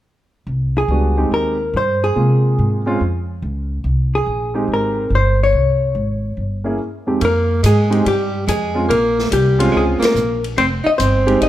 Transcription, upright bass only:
0.47 C2
0.88 C#2
1.31 D#2
1.74 G2
2.16 C3
2.59 G#2
3.01 F2
3.42 C#2
3.84 C2
4.26 A#1
4.68 G#1
5.10 G1
5.53 C2
5.95 G#1
6.37 G1
7.22 F2
7.63 G#2
8.06 G2
8.48 F2
8.90 A#1
9.32 C2
9.74 C#2
10.01 muted upright bass stroke
10.14 A#1
10.57 F1
10.86 muted upright bass stroke
10.99 G1
11.41 G#1

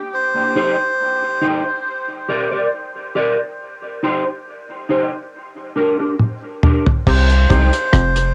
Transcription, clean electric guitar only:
0.55 D#4 G4 C5
1.41 D#4 G4 C5
2.29 G4 A#4 D5
2.51 G4 A#4 D5
3.15 G4 A#4 D5
4.03 D#4 G4 C5
4.89 D#4 G4 C5
5.76 D4 G4 A#4
5.99 D4 G4 A#4
6.63 D4 G4 A#4
7.50 D#4 G4 C5

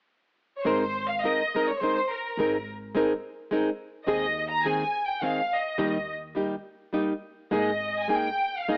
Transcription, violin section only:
0.57 C#5
0.64 C5
1.08 F5
1.22 D#5
1.68 C#5
1.81 C5
2.12 A#4
4.08 D#5
4.50 A#5
4.65 G#5
5.07 G5
5.23 F5
5.53 D#5
7.55 D#5
7.98 G#5
8.13 G5
8.58 F5
8.71 D#5

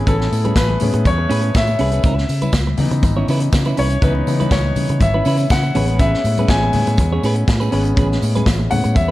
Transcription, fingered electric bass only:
0.07 A1
0.32 A2
0.56 A1
0.81 A2
0.94 A2
1.06 E2
1.30 A2
1.55 A2
1.79 C2
2.04 C#2
2.29 C#3
2.53 C#2
2.78 C#3
2.91 C#3
3.03 G#1
3.28 C#3
3.53 C#3
3.78 C2
4.02 C#2
4.27 C#3
4.51 C#2
4.76 C#3
4.90 C#3
5.01 G#1
5.26 C#3
5.51 C#3
5.75 A1
6.24 A2
6.49 A1
6.74 A2
6.87 A2
6.98 E2
7.23 A2
7.48 A2
7.72 G#1
7.97 A1
8.22 A2
8.47 A1
8.72 A2
8.85 A2
8.96 E2

